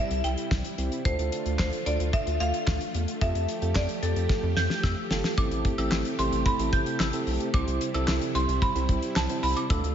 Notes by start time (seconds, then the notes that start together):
Already playing: C3 G3 C4 E4 A4 E5
0.11 C2, closed hi-hat
0.24 C2 G5, closed hi-hat
0.38 closed hi-hat
0.51 C2, kick, snare
0.64 closed hi-hat
0.78 C2 C4 E4 G4, closed hi-hat
0.92 closed hi-hat
1.05 D2 D3 A3 D4 F4 A4 C5, kick, closed hi-hat
1.19 D2 D4 F4 A4, closed hi-hat
1.32 closed hi-hat
1.46 D2, closed hi-hat
1.59 D2 C5, kick, snare, clap
1.73 closed hi-hat
1.86 D2 D4 F4 A4 D5, closed hi-hat
2.00 D2, closed hi-hat
2.13 E5, kick, closed hi-hat
2.27 D2, closed hi-hat
2.40 D2 F5, closed hi-hat
2.54 closed hi-hat
2.67 D2, kick, snare, clap
2.81 closed hi-hat
2.94 E2, closed hi-hat
3.08 closed hi-hat
3.21 F2 F3 F4 G4 A4 E5, kick, closed hi-hat
3.35 F2, closed hi-hat
3.48 closed hi-hat
3.62 F2 F4 G4 A4, closed hi-hat
3.75 F2 D5, kick, snare, clap
3.89 closed hi-hat
4.02 F2 A4, closed hi-hat
4.16 F2, closed hi-hat
4.29 kick, snare
4.43 F2
4.57 F2 G6, snare
4.70 snare
4.83 F2 E6, kick, snare
5.11 G1 F4 G4 A4, snare
5.24 snare
5.38 A1 C3 A3 C4 E4 G4 A4 D6, kick, closed hi-hat
5.51 A1, closed hi-hat
5.65 kick, closed hi-hat
5.78 A1 C4 E4 G4 A4 E6, closed hi-hat
5.92 A1, snare, clap
6.05 closed hi-hat
6.19 A1 C4 E4 G4 A4 C6, closed hi-hat
6.32 A1, closed hi-hat
6.46 B5, kick, closed hi-hat
6.59 A1 C4 E4 G4 A4, closed hi-hat
6.73 A1 G6, kick, closed hi-hat
6.86 closed hi-hat
7.00 A1 E6, snare, clap
7.13 C4 E4 G4 A4, closed hi-hat
7.27 B1, open hi-hat
7.40 closed hi-hat
7.54 C2 G3 C4 E4 G4 C5 D6, kick, closed hi-hat
7.67 C2, closed hi-hat
7.81 closed hi-hat
7.94 C2 C4 E4 G4 A4 E6, closed hi-hat
8.08 C2, snare, clap
8.21 closed hi-hat
8.35 C2 C4 E4 G4 C5 C6, closed hi-hat
8.48 C2, closed hi-hat
8.62 B5, kick, closed hi-hat
8.75 C2 C4 E4 G4 C5, closed hi-hat
8.89 C2, kick, closed hi-hat
9.02 closed hi-hat
9.16 C2 A5, snare, clap
9.29 C4 E4 G4 C5, closed hi-hat
9.43 C2 B5, open hi-hat
9.57 D6, closed hi-hat
9.70 D2 D3 A3 D4 F4 A4 E6, kick, closed hi-hat
9.84 D2, closed hi-hat